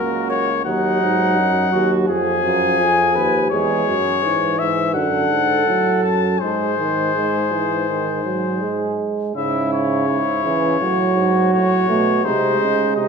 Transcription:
Already playing: C#2 A#3 F#4 A#4
0.30 C#5
0.65 D#2 F#3 D#4 F#5
1.01 G#2
1.38 F#2
1.72 D#2 F#4
2.08 F2 F3 G#4 G#5
2.44 F#2
2.80 F2
3.15 D#2 B4
3.51 E2 G#3 G#4 C#5
3.87 F#2
4.22 G#2 E3
4.59 G#2 E5
4.94 F#2 D3 A4 F#5
5.30 G#2
5.66 A2 F#3
6.04 F#2 A5
6.40 G#2 G#3 G#4 C5
6.78 D#3
7.15 G#3
7.51 E3
7.88 D#3
8.25 F#3
8.62 G#3
9.36 G#2 C#3 E4 E5
9.73 C#5
10.09 G#2 E4
10.44 C#3 E3
10.80 A2 F#3 F#4
11.17 G#2
11.53 A2 C#5
11.88 B2 A3
12.25 C3 G#3 D#4 C5
12.60 C#3
12.96 C3 D#4 D#5

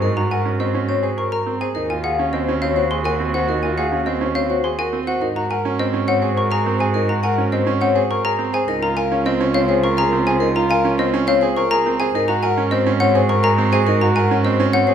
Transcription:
Already playing: G#2 F#4
0.02 D#4 A#4
0.17 F#4 A#5
0.31 A#4 F#5 G#5
0.46 C#4
0.60 C4 C5 D#5
0.75 C#4
0.89 C4 C#5
1.03 G#4 C5
1.18 A#4 C#6
1.32 A#4 A#5
1.46 C4
1.61 G#4 C5 G#5
1.75 D#2 D#4 F#4 A#4
1.90 F4 G#5
2.04 G#4 F5 F#5
2.19 C#4
2.33 C4 C5 D#5
2.48 C#4
2.62 C4 C#5 F5
2.76 F#4 C5
2.91 G#4 C6
3.04 F#4 A#4 G#5
3.20 C4
3.34 F#4 C5 F#5
3.49 D#4 A#4
3.63 F4 G#5
3.78 G#4 F5 F#5
3.92 C#4
4.06 C4 C5 D#5
4.21 C#4
4.35 C4 C#5 F5
4.50 F#4 C5
4.64 G#4 C6
4.79 F#4 A#4 G#5
4.93 C4
5.07 F#4 C5 F#5
5.21 G#2 D#4 F#4 A#4
5.36 F#4 A#5
5.50 A#4 F#5 G#5
5.65 C#4
5.79 C4 C5 D#5
5.94 C#4
6.08 C4 C#5 F#5
6.22 G#4 C5
6.37 A#4 C#6
6.51 G#4 A#4 A#5
6.66 C4
6.79 G#4 C5 G#5
6.94 D#4 A#4
7.09 F#4 A#5
7.23 A#4 F#5 G#5
7.38 C#4
7.52 C4 C5 D#5
7.67 C#4
7.81 C4 C#5 F#5
7.95 G#4 C5
8.10 A#4 C#6
8.25 G#4 A#4 A#5
8.39 C4
8.54 G#4 C5 G#5
8.68 C#2 D#4 F4 A#4
8.82 F4 A#5
8.97 A#4 F5 G#5
9.12 C#4
9.26 C4 C5 D#5
9.41 C#4
9.54 C4 C#5 F5
9.69 G#4 C5
9.84 A#4 C#6
9.97 G#4 A#4 A#5
10.13 C4
10.27 G#4 C5 G#5
10.40 D#4 A#4
10.56 F4 A#5
10.69 A#4 F5 G#5
10.85 C#4
10.98 C4 C5 D#5
11.14 C#4
11.27 C4 C#5 F5
11.41 G#4 C5
11.57 A#4 C#6
11.71 G#4 A#4 A#5
11.86 C4
12.00 G#4 C5 G#5
12.14 G#2 D#4 F#4 A#4
12.28 F#4 A#5
12.43 A#4 F#5 G#5
12.58 C#4
12.71 C4 C5 D#5
12.86 C#4
13.00 C4 C#5 F#5
13.15 G#4 C5
13.29 A#4 C#6
13.43 G#4 A#4 A#5
13.58 C4
13.72 G#4 C5 G#5
13.87 D#4 A#4
14.01 F#4 A#5
14.16 A#4 F#5 G#5
14.31 C#4
14.44 C4 C5 D#5
14.60 C#4
14.73 C4 C#5 F#5
14.87 G#4 C5

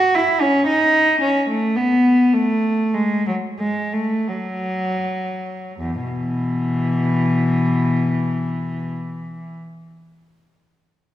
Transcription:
Already playing: F#4
0.14 E4
0.41 C#4
0.67 D#4
1.21 C#4
1.49 A3
1.76 B3
2.33 A3
2.94 G#3
3.27 F#3
3.59 G#3
3.93 A3
4.27 F#3
5.79 E2
6.02 B2 E3

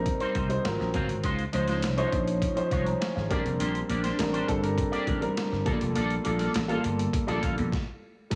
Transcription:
Already playing: G3 C4 D#4 A#4
0.06 muted clean electric guitar stroke, kick, closed hi-hat
0.20 G3 C4 D#4 C5, closed hi-hat
0.35 C2 G3 C4 D#4 C5, kick, closed hi-hat
0.49 G3 C4 D#4 C5, muted clean electric guitar stroke, closed hi-hat
0.64 G#1 F#3 C4 F4 A#4, snare, closed hi-hat
0.79 A#1, muted clean electric guitar stroke, snare
0.94 F#1 F#3 C4 F4 A#4, kick, closed hi-hat
1.09 G#1, muted clean electric guitar stroke, closed hi-hat
1.23 C#2 G#3 D#4 F4 C5, kick, closed hi-hat
1.39 closed hi-hat
1.53 C#2 F3 G#3 C#4 D#4 F4 C5, closed hi-hat
1.68 G#3 D#4 F4 C5, snare, closed hi-hat
1.82 C2, muted clean electric guitar stroke, snare, closed hi-hat
1.97 F3 G#3 C#4 D#4 F4 C5 C#5, closed hi-hat
2.12 A#1, muted clean electric guitar stroke, kick, closed hi-hat
2.27 muted clean electric guitar stroke, closed hi-hat
2.42 kick, closed hi-hat
2.55 F3 C#4 D#4 C5, muted clean electric guitar stroke, closed hi-hat
2.71 C2 G#3 D#4 F4 C#5, kick, closed hi-hat
2.86 C#5 A#5, muted clean electric guitar stroke, closed hi-hat
3.01 C5 G#5, snare, closed hi-hat
3.15 G#1 G#4 F5, muted clean electric guitar stroke, snare
3.29 A#1 G3 A#3 C4 D4 G4 A#4 D5, kick, closed hi-hat
3.45 F1, muted clean electric guitar stroke, closed hi-hat
3.59 A#1 A#3 D4 G4 C5, closed hi-hat
3.75 closed hi-hat
3.89 A#1 A#3 D4 G4 D5, closed hi-hat
4.04 A#3 D4 G4 C5, snare, closed hi-hat
4.18 A1 G3 C4 D4 A#4, muted clean electric guitar stroke, snare, closed hi-hat
4.33 A#3 D4 G4 C5, closed hi-hat
4.48 G1 G3 C4 D4 A4, muted clean electric guitar stroke, kick, closed hi-hat
4.62 G3 C4 D4 A#4, muted clean electric guitar stroke, closed hi-hat
4.77 muted clean electric guitar stroke, kick, closed hi-hat
4.92 A#3 D4 G4 D5, closed hi-hat
5.06 A1 A#3 D4 G4 D5, kick, closed hi-hat
5.21 G3 C4 D4 A#4, muted clean electric guitar stroke, closed hi-hat
5.37 snare, closed hi-hat
5.51 G1, muted clean electric guitar stroke, snare
5.65 A#1 G3 A3 A#3 F4 A4 D5, kick, closed hi-hat
5.72 A#3
5.80 F1, muted clean electric guitar stroke, closed hi-hat
5.95 A#1 A#3 F4 A4 D5, closed hi-hat
6.10 closed hi-hat
6.24 A#1 G3 A#3 F4 A4 D5, closed hi-hat
6.39 A#3 F4 A4 D5, snare, closed hi-hat
6.54 A1, muted clean electric guitar stroke, snare, closed hi-hat
6.68 G3 A#3 F4 A4 F5, closed hi-hat
6.84 G1, muted clean electric guitar stroke, closed hi-hat
6.98 muted clean electric guitar stroke, closed hi-hat
7.13 muted clean electric guitar stroke, kick, closed hi-hat
7.27 A#1 G3 A#3 F4 A4 D5, closed hi-hat
7.42 A1 A#3 F4 A4 F5, kick, closed hi-hat
7.57 A#1, muted clean electric guitar stroke, closed hi-hat
7.72 kick, snare
8.30 G1 G3 A#3 F4 A4, muted clean electric guitar stroke, kick, closed hi-hat, crash

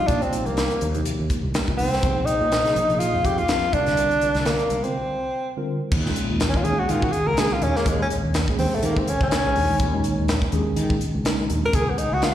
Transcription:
Already playing: C3 F3 A#3 D#4 G4
0.07 A#2 D4, kick, closed hi-hat
0.22 C4, closed hi-hat
0.32 C3 F3 A#3 D#4 G4, muted fretless electric bass stroke, closed hi-hat
0.46 C2 A#3, closed hi-hat
0.57 snare, closed hi-hat
0.71 closed hi-hat
0.81 D#2, closed hi-hat
0.94 C3 F3 A#3 D#4 G4, closed hi-hat
1.06 closed hi-hat
1.19 D#2
1.30 kick, closed hi-hat
1.43 C2
1.54 snare, closed hi-hat
1.67 C3 F3 A#3 D#4 F4, kick
1.77 C2 C4, open hi-hat
1.93 snare
2.03 A#1 C3 F3 A#3 D#4 G#4, kick, closed hi-hat
2.25 D#4, closed hi-hat
2.41 A#2
2.52 snare, closed hi-hat
2.64 C3 F3 A#3 D#4 G#4, muted fretless electric bass stroke, snare, closed hi-hat
2.75 A#1, closed hi-hat
2.89 C3 F3 A#3 D#4 G#4, closed hi-hat
2.99 F4, closed hi-hat
3.13 F2
3.25 G4, kick, closed hi-hat
3.38 F4, closed hi-hat
3.48 F2, snare, closed hi-hat
3.73 C2 D3 G3 C4 D4 F4 A#4, kick, closed hi-hat
3.86 snare, closed hi-hat
3.97 closed hi-hat
4.11 closed hi-hat
4.21 D3 G3 C4 F4 A#4, muted fretless electric bass stroke, closed hi-hat
4.35 C2, snare, closed hi-hat
4.45 A#3, snare, closed hi-hat
4.59 closed hi-hat
4.70 C2, closed hi-hat
4.84 D3 G3 C4 F4 A#4, closed hi-hat
5.57 D3 G3 C4 F4 A#4
5.91 D#2, kick, crash
6.05 A#2 D#3 G#3 C#4 F4, snare
6.16 muted fretless electric bass stroke, closed hi-hat
6.29 D#2
6.40 snare, closed hi-hat
6.50 C#4
6.54 F4, kick
6.64 D#2 A#2 D#3 G#3 C#4 G#4, closed hi-hat
6.80 F#4
6.89 D#3 F4, closed hi-hat
7.02 F#4, kick
7.12 G#4, muted fretless electric bass stroke, closed hi-hat
7.27 C#2 A#4
7.37 A#2 D#3 G#3 C#4 F4 G#4, snare, closed hi-hat
7.51 F4, muted fretless electric bass stroke
7.61 D#2 C#4, closed hi-hat
7.75 A#2 D#3 G#3 A#3 C#4 G#4, snare
7.86 D#2 G#3, kick, closed hi-hat
8.02 C#4
8.10 closed hi-hat
8.24 D#2
8.34 snare, closed hi-hat
8.47 A#2 D#3 G#3 C#4 G#4, kick
8.59 D#2 C4, open hi-hat
8.72 A3, muted fretless electric bass stroke
8.83 D#3 A#3, closed hi-hat
8.97 C4, kick
9.07 C#4, muted fretless electric bass stroke, closed hi-hat
9.20 C#2 C#4, kick
9.31 snare, closed hi-hat
9.44 A#2 D#3 G#3 C#4 G#4, muted fretless electric bass stroke
9.56 D#2, open hi-hat
9.69 A#2 D#3 G#3 C#4 D#4
9.79 D#2, kick, closed hi-hat
9.93 A#2 D#3 G#3 C#4 D#4
10.04 closed hi-hat
10.18 D#2
10.28 snare, closed hi-hat
10.42 kick
10.52 D#2 A#2 D#3 G#3 C#4 G#4, closed hi-hat
10.66 muted fretless electric bass stroke
10.76 D#3, closed hi-hat
10.90 kick
11.01 muted fretless electric bass stroke, closed hi-hat
11.15 C#2
11.24 A#2 D#3 G#3 C#4 D#4, snare, closed hi-hat
11.39 muted fretless electric bass stroke
11.50 D#2, closed hi-hat
11.62 A#2 D#3 G#3 C#4 F4 A#4
11.73 C#2 G#4, kick, closed hi-hat
11.90 B3
11.98 D#4, muted fretless electric bass stroke, closed hi-hat
12.12 C#2 F#4
12.22 F4, snare, closed hi-hat

